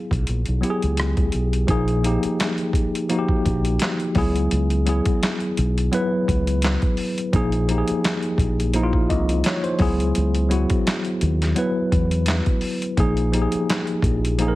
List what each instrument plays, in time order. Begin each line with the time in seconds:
Already playing: tine electric piano F#3 B3 E4 G#4 F5
0.11 fingered electric bass B1, kick, closed hi-hat
0.27 fingered electric bass A#1, closed hi-hat
0.46 fingered electric bass B1, closed hi-hat
0.61 tine electric piano F#3 B3 E4 G4, closed hi-hat
0.70 tine electric piano G#4
0.82 fingered electric bass C#2, closed hi-hat
0.97 cross-stick, closed hi-hat
1.17 fingered electric bass C#2, kick, closed hi-hat
1.32 fingered electric bass B1, closed hi-hat
1.53 closed hi-hat
1.67 fingered electric bass A#1, tine electric piano F3 A#3 D#4 G#4, kick, closed hi-hat
1.88 closed hi-hat
2.03 tine electric piano F3 A#3 D#4 G4, closed hi-hat
2.23 muted fingered electric bass stroke, closed hi-hat
2.40 snare, clap, closed hi-hat
2.58 closed hi-hat
2.73 kick, closed hi-hat
2.95 closed hi-hat
3.09 tine electric piano F3 A#3 D#4 F#4, closed hi-hat
3.19 tine electric piano G4
3.29 kick
3.46 fingered electric bass A#1, kick, closed hi-hat
3.65 closed hi-hat
3.79 snare, clap, closed hi-hat
4.00 closed hi-hat
4.15 fingered electric bass C#2, tine electric piano F#3 B3 E4 G#4, kick, open hi-hat
4.36 closed hi-hat
4.51 fingered electric bass C#2, closed hi-hat
4.70 closed hi-hat
4.86 tine electric piano F#3 B3 E4 G#4, closed hi-hat
5.05 muted fingered electric bass stroke, kick, closed hi-hat
5.23 snare, clap, closed hi-hat
5.40 closed hi-hat
5.57 fingered electric bass B1, closed hi-hat
5.78 closed hi-hat
5.92 tine electric piano F#3 B3 E4 B4, closed hi-hat
6.28 fingered electric bass C#2, kick, closed hi-hat
6.47 closed hi-hat
6.62 snare, clap, closed hi-hat
6.82 kick, closed hi-hat
6.97 open hi-hat
7.18 closed hi-hat
7.33 fingered electric bass A#1, tine electric piano F3 A#3 D#4 G#4, kick, closed hi-hat
7.52 closed hi-hat
7.68 tine electric piano F3 A#3 D#4 G4, closed hi-hat
7.78 tine electric piano G#4
7.88 muted fingered electric bass stroke, closed hi-hat
8.04 snare, clap, closed hi-hat
8.23 closed hi-hat
8.38 fingered electric bass A#1, kick, closed hi-hat
8.60 closed hi-hat
8.74 tine electric piano F3 A#3 D#4 E4, closed hi-hat
8.83 tine electric piano F4
8.93 kick
9.10 fingered electric bass C2, tine electric piano D#5, kick, closed hi-hat
9.29 closed hi-hat
9.44 tine electric piano C#5, snare, clap, closed hi-hat
9.64 tine electric piano C5, closed hi-hat
9.79 fingered electric bass C#2, tine electric piano F#3 B3 E4 G#4, kick, open hi-hat
10.00 closed hi-hat
10.15 fingered electric bass C#2, closed hi-hat
10.35 closed hi-hat
10.49 tine electric piano F#3 B3 E4 F#4, closed hi-hat
10.70 muted fingered electric bass stroke, kick, closed hi-hat
10.87 snare, clap, closed hi-hat
11.05 closed hi-hat
11.21 fingered electric bass D#2, closed hi-hat
11.42 snare, closed hi-hat
11.55 tine electric piano F#3 B3 E4 B4, closed hi-hat
11.92 fingered electric bass E2, kick, closed hi-hat
12.11 closed hi-hat
12.26 snare, clap, closed hi-hat
12.46 kick, closed hi-hat
12.61 open hi-hat
12.82 closed hi-hat
12.97 fingered electric bass A#1, tine electric piano F3 A#3 D#4 G#4, kick, closed hi-hat
13.17 closed hi-hat
13.32 tine electric piano F3 A#3 D#4 G4, closed hi-hat
13.42 tine electric piano G#4
13.52 muted fingered electric bass stroke, closed hi-hat
13.70 snare, clap, closed hi-hat
13.87 closed hi-hat
14.02 fingered electric bass A#1, kick, closed hi-hat
14.25 closed hi-hat
14.39 tine electric piano F3 A#3 D#4 G#4, closed hi-hat
14.48 tine electric piano A#4